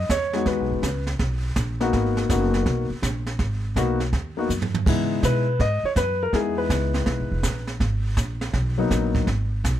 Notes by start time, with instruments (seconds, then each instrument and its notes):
Already playing: grand piano D#5
0.09 upright bass E2, grand piano C#5, kick, snare, hi-hat pedal
0.33 grand piano G#3 B3 D#4 F#4, snare
0.46 upright bass D#2, grand piano B4, brush sweep, kick, snare
0.60 upright bass B1
0.71 upright bass G#1
0.82 upright bass C#2, kick, snare, hi-hat pedal
1.07 snare
1.19 upright bass B1, brush sweep, kick, snare
1.56 upright bass A#1, kick, snare, hi-hat pedal
1.80 grand piano A#3 B3 D#4 F#4, snare
1.93 upright bass G#1, brush sweep, kick, snare
2.17 snare
2.30 upright bass F#1, grand piano A#3 B3 D#4 F#4, kick, snare, hi-hat pedal
2.54 snare
2.66 upright bass B1, brush sweep, kick, snare
2.90 muted upright bass stroke
3.02 upright bass A#1, kick, snare, hi-hat pedal
3.27 snare
3.39 upright bass G#1, brush sweep, kick, snare
3.76 upright bass B1, grand piano A#3 B3 D#4 F#4, kick, snare, hi-hat pedal
4.00 snare
4.13 upright bass D#2, brush sweep, kick, snare
4.37 grand piano A#3 B3 D#4 F#4
4.49 upright bass F#2, hi-hat pedal
4.62 floor tom
4.74 floor tom
4.86 upright bass C#3, grand piano G#3 B3 D#4 E4, brush sweep, kick, snare, crash
5.23 upright bass B2, grand piano B4, kick, snare, hi-hat pedal
5.59 upright bass G#2, grand piano D#5, brush sweep, kick, snare
5.83 grand piano C#5, muted upright bass stroke
5.96 upright bass F#2, grand piano B4, kick, snare, hi-hat pedal
6.23 grand piano A#4
6.33 upright bass E2, grand piano G#3 B3 D#4 E4 G#4, brush sweep, kick, snare
6.58 grand piano B4
6.69 upright bass C#2, kick, snare, hi-hat pedal
6.94 snare
7.06 upright bass B1, brush sweep, kick, snare
7.20 upright bass G#1
7.31 upright bass E1
7.43 upright bass A#1, kick, snare, hi-hat pedal
7.67 snare
7.80 upright bass G#1, brush sweep, kick, snare
8.17 upright bass A#1, kick, snare, hi-hat pedal
8.41 snare
8.53 upright bass B1, brush sweep, kick, snare
8.78 grand piano F#3 A#3 B3 D#4
8.91 upright bass A#1, kick, snare, hi-hat pedal
9.15 kick, snare
9.27 upright bass G#1, brush sweep, kick, snare
9.64 upright bass B1, kick, snare, hi-hat pedal